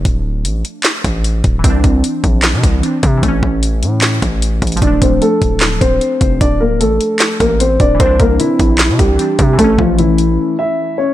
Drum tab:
HH |x-------x---x---x---x---x---x---|x---x---x---x---x---x---x---x---|x-------x---x---x---x---x---xxxx|x---x---x---x---x---x---x---x---|
CP |----------------x---------------|----------------x---------------|----------------x---------------|----------------x---------------|
SD |----------------o---------------|----------------o---------------|----------------o---------------|----------------o---------------|
BD |o-------------------o-------o---|o---o-------o-------o-------o---|o---o---------------o-------o---|o---o-------o-------o-------o---|

HH |x-------x---x---x---x---x---x---|x---x---x---x---x---x---x---x---|x-------x---x-------------------|
CP |----------------x---------------|----------------x---------------|--------------------------------|
SD |----------------o---------------|----------------o---------------|--------------------------------|
BD |o-------------------o-------o---|o---o-------o-------o-------o---|o---o---------------------------|